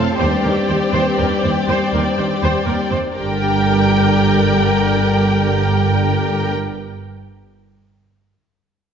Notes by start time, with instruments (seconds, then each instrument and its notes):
Already playing: trombone section A2, french horn section A3, string section C4 A4 C5 F5, violin section A4 F5 A5
0.18 double bass section D#2, cello section D#2, trombone section G2, french horn section G3, string section G4 D5, violin section G4 D5 G5, viola section C5
0.43 cello section D#2, double bass section D#2, viola section A#4
0.69 cello section D#2, double bass section D#2, viola section C5
0.93 cello section D#2, double bass section D#2, viola section C5
1.18 cello section D#2, double bass section D#2, viola section A#4
1.43 double bass section D#2, cello section D#2, viola section C5
1.68 double bass section D#2, cello section D#2, viola section C5
1.93 cello section D#2, double bass section D#2, viola section A#4
2.17 double bass section D#2, cello section D#2, viola section C5
2.42 double bass section D#2, cello section D#2, viola section C5
2.66 cello section D#2, double bass section D#2, viola section A#4
2.91 cello section D#2, double bass section D#2, viola section C5
3.15 double bass section G1, cello section G2, trombone section D3, french horn section G3, string section D4 G4 A#4 D5, viola section G4 A#4, violin section A#4 G5